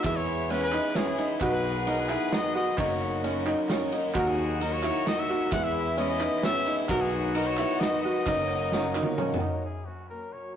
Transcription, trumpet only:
0, 0, Header, 1, 2, 480
1, 0, Start_track
1, 0, Tempo, 457317
1, 47, Time_signature, 3, 2, 24, 8
1, 11087, End_track
2, 0, Start_track
2, 0, Title_t, "Trumpet"
2, 0, Program_c, 0, 56
2, 56, Note_on_c, 0, 76, 114
2, 174, Note_on_c, 0, 73, 100
2, 190, Note_off_c, 0, 76, 0
2, 533, Note_on_c, 0, 71, 99
2, 548, Note_off_c, 0, 73, 0
2, 649, Note_off_c, 0, 71, 0
2, 663, Note_on_c, 0, 71, 107
2, 1015, Note_on_c, 0, 68, 102
2, 1031, Note_off_c, 0, 71, 0
2, 1369, Note_off_c, 0, 68, 0
2, 1484, Note_on_c, 0, 71, 91
2, 1595, Note_off_c, 0, 71, 0
2, 1607, Note_on_c, 0, 71, 91
2, 1973, Note_on_c, 0, 70, 82
2, 1988, Note_off_c, 0, 71, 0
2, 2087, Note_off_c, 0, 70, 0
2, 2095, Note_on_c, 0, 71, 97
2, 2451, Note_on_c, 0, 75, 111
2, 2467, Note_off_c, 0, 71, 0
2, 2686, Note_off_c, 0, 75, 0
2, 2692, Note_on_c, 0, 75, 107
2, 2910, Note_off_c, 0, 75, 0
2, 2927, Note_on_c, 0, 73, 88
2, 3369, Note_off_c, 0, 73, 0
2, 4375, Note_on_c, 0, 70, 92
2, 4497, Note_on_c, 0, 68, 91
2, 4513, Note_off_c, 0, 70, 0
2, 4849, Note_on_c, 0, 70, 90
2, 4865, Note_off_c, 0, 68, 0
2, 4960, Note_on_c, 0, 73, 104
2, 4975, Note_off_c, 0, 70, 0
2, 5329, Note_on_c, 0, 75, 111
2, 5345, Note_off_c, 0, 73, 0
2, 5452, Note_on_c, 0, 76, 103
2, 5467, Note_off_c, 0, 75, 0
2, 5800, Note_off_c, 0, 76, 0
2, 5807, Note_on_c, 0, 78, 112
2, 5919, Note_on_c, 0, 76, 111
2, 5934, Note_off_c, 0, 78, 0
2, 6277, Note_off_c, 0, 76, 0
2, 6287, Note_on_c, 0, 75, 92
2, 6391, Note_off_c, 0, 75, 0
2, 6397, Note_on_c, 0, 75, 102
2, 6731, Note_off_c, 0, 75, 0
2, 6765, Note_on_c, 0, 76, 127
2, 7095, Note_off_c, 0, 76, 0
2, 7236, Note_on_c, 0, 70, 105
2, 7361, Note_on_c, 0, 68, 91
2, 7376, Note_off_c, 0, 70, 0
2, 7716, Note_on_c, 0, 70, 90
2, 7731, Note_off_c, 0, 68, 0
2, 7836, Note_on_c, 0, 73, 99
2, 7852, Note_off_c, 0, 70, 0
2, 8186, Note_on_c, 0, 75, 116
2, 8201, Note_off_c, 0, 73, 0
2, 8415, Note_off_c, 0, 75, 0
2, 8422, Note_on_c, 0, 75, 112
2, 9591, Note_off_c, 0, 75, 0
2, 10121, Note_on_c, 0, 68, 68
2, 10355, Note_on_c, 0, 66, 65
2, 10371, Note_off_c, 0, 68, 0
2, 10588, Note_off_c, 0, 66, 0
2, 10595, Note_on_c, 0, 70, 63
2, 10839, Note_on_c, 0, 73, 64
2, 10855, Note_off_c, 0, 70, 0
2, 11073, Note_off_c, 0, 73, 0
2, 11087, End_track
0, 0, End_of_file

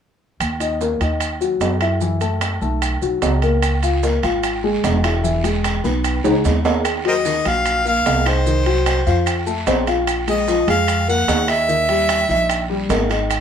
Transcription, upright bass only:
0, 0, Header, 1, 2, 480
1, 0, Start_track
1, 0, Key_signature, -6, "minor"
1, 0, Tempo, 402955
1, 482, Time_signature, 4, 2, 24, 8
1, 15966, End_track
2, 0, Start_track
2, 0, Title_t, "Upright bass"
2, 0, Program_c, 0, 32
2, 478, Note_on_c, 0, 39, 81
2, 1152, Note_off_c, 0, 39, 0
2, 1194, Note_on_c, 0, 39, 76
2, 1869, Note_off_c, 0, 39, 0
2, 1913, Note_on_c, 0, 42, 83
2, 3044, Note_off_c, 0, 42, 0
2, 3118, Note_on_c, 0, 35, 81
2, 3566, Note_off_c, 0, 35, 0
2, 3599, Note_on_c, 0, 35, 60
2, 3823, Note_off_c, 0, 35, 0
2, 3841, Note_on_c, 0, 37, 80
2, 4969, Note_off_c, 0, 37, 0
2, 5044, Note_on_c, 0, 32, 77
2, 5715, Note_off_c, 0, 32, 0
2, 5763, Note_on_c, 0, 28, 86
2, 6891, Note_off_c, 0, 28, 0
2, 6961, Note_on_c, 0, 35, 83
2, 7408, Note_off_c, 0, 35, 0
2, 7444, Note_on_c, 0, 37, 65
2, 7666, Note_off_c, 0, 37, 0
2, 7682, Note_on_c, 0, 39, 81
2, 8811, Note_off_c, 0, 39, 0
2, 8886, Note_on_c, 0, 34, 80
2, 9557, Note_off_c, 0, 34, 0
2, 9602, Note_on_c, 0, 36, 84
2, 10731, Note_off_c, 0, 36, 0
2, 10798, Note_on_c, 0, 41, 85
2, 11473, Note_off_c, 0, 41, 0
2, 11518, Note_on_c, 0, 34, 83
2, 12649, Note_off_c, 0, 34, 0
2, 12713, Note_on_c, 0, 41, 84
2, 13390, Note_off_c, 0, 41, 0
2, 13437, Note_on_c, 0, 39, 88
2, 14568, Note_off_c, 0, 39, 0
2, 14638, Note_on_c, 0, 34, 84
2, 15311, Note_off_c, 0, 34, 0
2, 15358, Note_on_c, 0, 32, 89
2, 15966, Note_off_c, 0, 32, 0
2, 15966, End_track
0, 0, End_of_file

